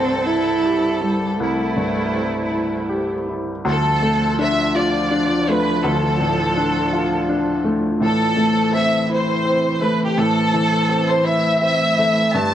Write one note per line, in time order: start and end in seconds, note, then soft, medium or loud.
0.00 1.35 C2 medium
0.00 0.13 G2 medium
0.00 3.61 G3 medium
0.00 0.28 C4 medium
0.00 0.49 C4 medium
0.00 3.61 E4 medium
0.00 1.36 A4 medium
0.00 3.65 C5 medium
0.26 0.86 E4 medium
0.26 1.04 E4 medium
0.65 1.25 G4 soft
1.02 1.39 G3 medium
1.02 1.62 E4 soft
1.40 3.62 C2 medium
1.40 3.25 A3 medium
1.40 3.11 E4 medium
1.76 2.37 G2 soft
2.14 2.75 C4 soft
2.52 3.13 E4 soft
2.89 3.50 G4 soft
3.29 3.66 E4 soft
3.65 5.80 D2 medium
3.65 7.97 F3 medium
3.65 7.97 A3 medium
3.65 7.96 F4 medium
3.65 4.36 A4 loud
3.65 7.96 D5 medium
4.02 4.61 A3 medium
4.39 4.97 D4 medium
4.39 4.76 E5 loud
4.75 5.34 F4 medium
4.75 5.49 D5 medium
5.11 5.70 D4 medium
5.48 6.06 A3 medium
5.48 5.85 B4 loud
5.84 7.96 D2 medium
5.84 7.65 A4 medium
6.20 6.78 A2 medium
6.57 7.14 D4 medium
6.93 7.50 F4 medium
7.29 7.86 D4 medium
7.64 8.00 A3 medium
8.00 10.12 A2 medium
8.00 12.30 E3 medium
8.00 12.31 A3 medium
8.00 8.70 A4 loud
8.00 12.35 C5 medium
8.04 12.35 E4 medium
8.36 8.95 A3 medium
8.73 9.31 C4 medium
8.73 9.10 E5 loud
9.09 9.67 E4 medium
9.09 9.81 C5 loud
9.45 10.02 C4 medium
9.81 10.38 A3 medium
9.81 9.99 B4 medium
10.03 10.19 G4 medium
10.17 12.30 A2 medium
10.17 11.08 A4 loud
10.54 11.10 E3 medium
10.89 11.46 C4 medium
11.09 11.25 C5 medium
11.24 11.83 E4 medium
11.24 12.34 E5 loud
11.62 12.20 C4 medium
11.98 12.34 A3 medium
12.34 12.54 G2 medium
12.34 12.54 G3 medium
12.34 12.54 E4 medium
12.34 12.54 B4 medium
12.34 12.54 A5 loud